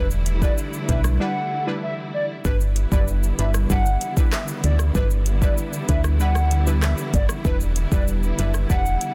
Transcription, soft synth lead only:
0.42 0.54 D5 medium
0.89 1.01 E5 medium
1.20 1.64 F#5 loud
1.83 1.94 E5 medium
2.14 2.26 D5 medium
2.45 2.57 B4 loud
2.92 3.04 D5 medium
3.39 3.51 E5 medium
3.70 4.14 F#5 loud
4.33 4.44 E5 medium
4.64 4.76 D5 medium
4.95 5.07 B4 loud
5.42 5.54 D5 medium
5.89 6.01 E5 medium
6.20 6.64 F#5 loud
6.83 6.94 E5 medium
7.14 7.26 D5 medium
7.45 7.57 B4 loud
7.92 8.04 D5 medium
8.39 8.51 E5 medium
8.70 9.14 F#5 loud

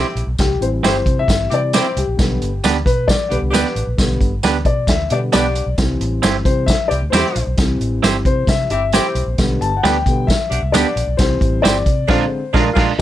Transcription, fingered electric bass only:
0.15 0.25 A#1 medium
0.27 0.36 B1 medium
0.39 0.57 C2 loud
0.61 0.79 A1 medium
0.83 1.02 G1 medium
1.06 1.24 C3 loud
1.28 1.47 G1 medium
1.51 1.78 C3 medium
1.97 2.05 C2 loud
2.07 2.16 A#1 medium
2.19 2.37 B1 loud
2.42 2.60 G1 medium
2.64 2.82 D2 loud
2.86 3.13 B2 loud
3.32 3.41 B1 medium
3.42 3.51 C2 medium
3.54 3.63 D2 medium
3.76 3.85 A1 medium
3.87 3.96 A#1 medium
3.98 4.17 B1 loud
4.21 4.39 G1 medium
4.43 4.62 D2 medium
4.65 4.84 B2 loud
4.87 5.06 D2 medium
5.11 5.29 B2 medium
5.33 5.61 B1 medium
5.66 5.76 B1 medium
5.78 5.96 C2 loud
6.00 6.19 A1 medium
6.23 6.41 G1 medium
6.45 6.73 C3 loud
6.91 7.00 C2 medium
7.02 7.11 D2 medium
7.13 7.22 E2 medium
7.36 7.45 A#1 medium
7.47 7.56 B1 medium
7.58 7.77 C2 loud
7.80 7.99 A1 medium
8.03 8.21 G1 medium
8.25 8.44 C3 loud
8.47 8.66 C3 loud
8.70 8.98 G1 medium
9.15 9.24 B1 medium
9.26 9.36 A#1 medium
9.38 9.57 B1 loud
9.61 9.79 G1 medium
9.84 10.02 D2 loud
10.06 10.33 B2 loud
10.51 10.60 B1 medium
10.63 10.72 C2 medium
10.74 10.83 D2 loud
10.96 11.05 A#1 medium
11.07 11.16 B1 medium
11.19 11.37 C2 loud
11.41 11.59 A1 medium
11.64 11.82 G1 loud
11.86 12.04 C3 loud
12.09 12.24 A#1 medium
12.54 12.69 A#1 loud
12.76 12.92 A#1 loud

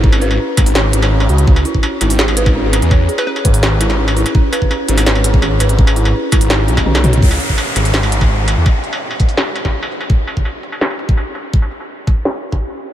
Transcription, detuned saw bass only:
0.00 0.38 G#1 loud
0.58 0.92 G#1 loud
0.93 1.28 G#1 loud
1.29 1.46 C#2 loud
1.47 1.64 C#2 loud
2.01 2.81 G#1 loud
2.82 3.08 E2 medium
3.45 4.25 G#1 loud
4.89 5.59 G#1 loud
5.61 6.13 G#1 loud
6.32 6.70 G#1 loud
6.68 7.21 B1 medium
7.22 7.39 C#2 loud
7.76 8.56 G#1 loud
8.57 8.65 E2 medium

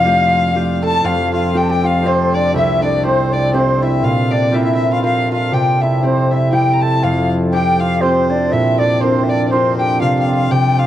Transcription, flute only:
0.00 0.63 F5 loud
0.85 1.08 A5 loud
1.07 1.34 F5 loud
1.35 1.59 F5 medium
1.58 1.65 G5 medium
1.63 1.73 A5 medium
1.71 1.86 G5 medium
1.85 2.08 F5 medium
2.06 2.36 C5 loud
2.35 2.55 D5 medium
2.55 2.81 E5 loud
2.83 3.03 D5 medium
3.05 3.34 C5 medium
3.32 3.56 D5 medium
3.55 3.84 C5 medium
3.83 4.04 E5 medium
4.06 4.33 F5 medium
4.32 4.56 D5 medium
4.55 4.95 E5 medium
4.93 5.03 F5 medium
5.03 5.29 F5 loud
5.32 5.55 F5 medium
5.54 5.83 G5 loud
5.81 6.03 E5 medium
6.04 6.34 C5 medium
6.32 6.56 E5 medium
6.54 6.84 G5 medium
6.82 7.05 A5 medium
7.03 7.29 F5 medium
7.51 7.78 G5 medium
7.80 8.02 F5 medium
8.01 8.31 C5 loud
8.30 8.53 D5 medium
8.52 8.80 E5 loud
8.79 9.02 D5 medium
9.00 9.25 C5 medium
9.24 9.30 E5 medium
9.28 9.49 D5 medium
9.49 9.76 C5 loud
9.77 10.01 G5 medium
10.00 10.28 F5 loud
10.29 10.49 F5 medium
10.50 10.81 G5 medium
10.80 10.87 F5 medium

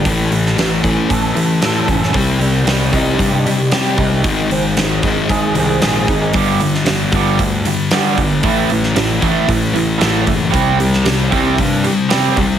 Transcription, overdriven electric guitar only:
6.35 6.59 G2 medium
6.35 6.60 D3 medium
6.35 6.60 G3 medium
6.61 6.84 G2 medium
6.61 6.85 D3 medium
6.87 7.11 G2 medium
6.87 7.11 D3 medium
7.15 7.39 G2 medium
7.15 7.39 D3 medium
7.15 7.39 G3 medium
7.41 7.64 G2 medium
7.41 7.64 D3 medium
7.67 7.90 G2 medium
7.67 7.90 D3 medium
7.93 8.17 G2 medium
7.93 8.17 D3 medium
7.93 8.18 G3 medium
8.18 8.42 G2 medium
8.18 8.42 D3 medium
8.44 8.69 A2 medium
8.44 8.69 E3 loud
8.44 8.70 A3 loud
8.71 8.94 A2 medium
8.71 8.95 E3 medium
8.96 9.20 A2 medium
8.96 9.20 E3 medium
9.22 9.45 A2 medium
9.22 9.46 E3 loud
9.22 9.48 A3 loud
9.47 9.72 A2 medium
9.47 9.72 E3 medium
9.74 9.97 A2 medium
9.74 9.98 E3 medium
9.98 10.25 A2 medium
9.98 10.25 E3 medium
9.98 10.25 A3 medium
10.26 10.50 A2 medium
10.26 10.50 E3 medium
10.50 10.77 C3 medium
10.50 10.77 G3 loud
10.50 10.77 C4 medium
10.78 11.03 C3 medium
10.78 11.03 G3 medium
11.04 11.29 C3 medium
11.04 11.29 G3 medium
11.30 11.54 C3 medium
11.30 11.55 G3 medium
11.30 11.57 C4 loud
11.55 11.81 C3 medium
11.55 11.81 G3 medium
11.84 12.08 C3 medium
11.84 12.08 G3 medium
12.09 12.35 C3 medium
12.09 12.35 G3 medium
12.09 12.35 C4 medium
12.37 12.59 C3 medium
12.37 12.59 G3 medium

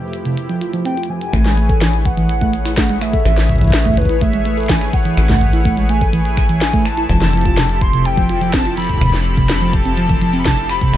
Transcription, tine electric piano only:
0.25 0.35 C3 medium
0.49 0.61 F3 medium
0.61 0.71 F4 medium
0.73 0.83 F3 loud
0.85 0.95 C4 loud
0.97 1.07 F4 medium
1.09 1.19 F3 medium
1.34 1.43 A3 medium
1.45 1.51 G#3 medium
1.58 1.69 A3 medium
1.69 1.81 A4 medium
1.81 1.87 E3 medium
2.17 2.27 E3 medium
2.41 2.53 A3 medium
2.65 2.71 E4 medium
2.77 2.87 A3 medium
2.89 2.95 G#3 medium
3.01 3.13 A3 medium
3.13 3.25 A4 medium
3.25 3.31 E3 medium
3.61 3.71 E3 medium
3.85 3.97 A3 loud
4.09 4.15 E4 medium
4.21 4.31 A3 medium
4.33 4.39 G#3 medium
4.45 4.57 A3 medium
4.57 4.69 A4 medium
4.69 4.75 E3 medium
5.05 5.15 E3 medium
5.29 5.41 A3 loud
5.53 5.59 E4 medium
5.65 5.75 A3 medium
5.77 5.83 G#3 medium
5.89 6.01 A3 medium
6.01 6.13 A4 medium
6.13 6.19 E3 medium
6.49 6.59 E3 medium
6.73 6.85 A3 loud
6.98 7.03 E4 medium
7.10 7.19 F3 medium
7.22 7.27 E3 medium
7.34 7.45 F3 medium
7.46 7.57 F4 medium
7.58 7.63 C3 medium
7.93 8.03 C3 medium
8.17 8.29 F3 medium
8.30 8.39 F4 medium
8.42 8.51 F3 loud
8.54 8.63 C4 loud
8.66 8.75 F4 medium
8.78 8.87 F3 medium
9.02 9.07 C3 medium
9.37 9.47 C3 medium
9.61 9.73 F3 loud
9.85 9.91 C4 medium
9.97 10.07 F3 medium
10.09 10.15 E3 medium
10.21 10.33 F3 medium
10.34 10.45 C4 medium
10.45 10.51 C3 medium
10.81 10.91 C3 medium

